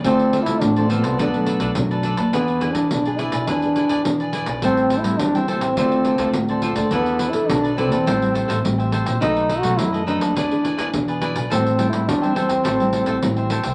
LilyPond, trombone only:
\new Staff \with { instrumentName = "Trombone" } { \time 4/4 \key a \minor \tempo 4 = 105 \tuplet 3/2 { c'4 e'8 } d'8 b2 r8 | \tuplet 3/2 { b4 d'8 } d'8 e'8 d'4. r8 | \tuplet 3/2 { c'4 e'8 } d'16. d'32 c'2 r8 | \tuplet 3/2 { b4 e'8 } d'8 c'2 r8 |
\tuplet 3/2 { dis'4 fis'8 } e'8 d'2 r8 | \tuplet 3/2 { c'4 e'8 } d'8 c'2 r8 | }